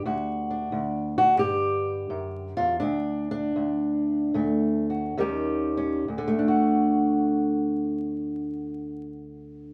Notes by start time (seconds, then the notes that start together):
Already playing: D3
0.06 D2 F#4
0.51 D4
0.72 D2
1.18 F#4
1.39 G2 G4
2.10 F#2
2.57 E2 F4
2.80 D2 D4
3.31 D4
3.56 D2
4.34 D2 A3
4.90 F#4
5.17 D#2 D#3 G3 C#4 G4
5.77 C#4
6.08 D2
6.18 D3
6.28 A3
6.39 D4
6.48 F#4